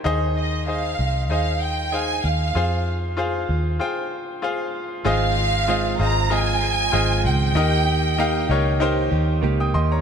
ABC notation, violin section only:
X:1
M:4/4
L:1/8
Q:"Swing 16ths" 1/4=96
K:Ab
V:1 name="Violin section"
z e f2 f g a f- | f z6 z | f3 b a3 g- | g4- g z3 |]